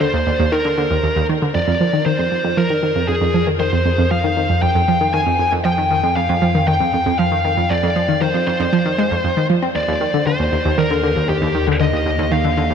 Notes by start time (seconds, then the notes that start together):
Already playing: D#2
0.01 D3 C5
0.14 D#2
0.26 D#2
0.39 D#2
0.52 D#3 A#4
0.65 D3
0.78 D3
0.91 D#2
1.03 D#2
1.16 D#2
1.29 D#3
1.42 D3
1.55 F2 D5
1.68 F2
1.80 F3
1.93 D#3
2.06 D#3 C5
2.19 F2
2.32 F2
2.44 F2
2.57 F3 A#4
2.70 D#3
2.83 D#3
2.96 F2
3.08 F2 G#4
3.21 F2
3.34 F3
3.47 D#3
3.60 D#3 C5
3.73 F2
3.86 F2
3.98 F2
4.11 F3 F5
4.24 D#3
4.37 D#3
4.50 F2
4.62 F2 G5
4.75 F2
4.88 F3
5.01 D#3
5.14 D#3 G#5
5.26 F2
5.39 F2
5.52 F2
5.65 F3 G5
5.78 D#3
5.91 D#3
6.03 F2
6.16 F2 F5
6.29 F2
6.42 F3
6.55 D#3
6.68 D#3 G5
6.80 F2
6.93 F2
7.06 F2
7.19 F3 F5
7.32 D#3
7.45 D#3
7.57 F2
7.70 F2 D5
7.83 F2
7.96 F3
8.09 D#3
8.21 D#3 C5
8.34 F2
8.47 F2 C5
8.60 F2
8.73 F3
8.86 D#3
8.98 G#3
9.11 F2
9.24 F2
9.37 D#3
9.50 F3
9.62 C4
9.75 D#2 D5
9.88 D#2
10.01 D#3
10.14 D3
10.27 D3 C5
10.39 D#2
10.52 D#2
10.65 D#2
10.78 D#3 A#4
10.91 D3
11.03 D3
11.16 D#2
11.29 D#2 G4
11.42 D#2
11.55 D#3
11.68 D3
11.80 D3 D#5
11.93 D#2
12.06 D#2
12.19 D#2
12.32 D#3 F5
12.44 D3
12.57 D3
12.70 D#2